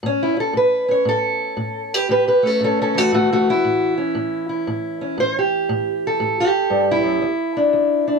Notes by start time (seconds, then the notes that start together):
0.03 A2 C#4
0.23 E4
0.37 C#4 A4
0.53 A2 B4
0.88 C#4 C#5
1.05 A2 A4
1.57 A2
1.94 G4 B4
2.09 A2 G4 B4
2.28 G4 B4
2.43 A3 C#4
2.47 A4
2.60 A2 C#4
2.65 A4
2.82 C#4 A4
2.94 E3 A3 F#4
3.12 A2 A3 F#4
3.33 A3 F#4
3.50 E4
3.64 A2
3.98 C#4
4.15 A2
4.49 E4
4.67 A2
5.01 C#4
5.18 A2 C5
5.39 G4
5.69 A2
6.07 A4
6.20 A2
6.40 G4
6.70 G2
6.91 E4
7.03 F#2
7.22 E2
7.57 D4
7.73 E2
8.08 D4